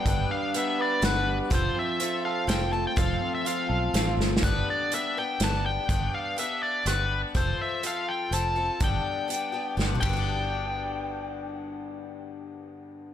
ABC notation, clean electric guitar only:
X:1
M:3/4
L:1/8
Q:1/4=123
K:Gmix
V:1 name="Clean electric guitar"
[G,B,B] D B, B B, G, | F, C F A F A, | F, C F A F A, | z6 |
z6 | z6 | z6 | z6 |
z6 |]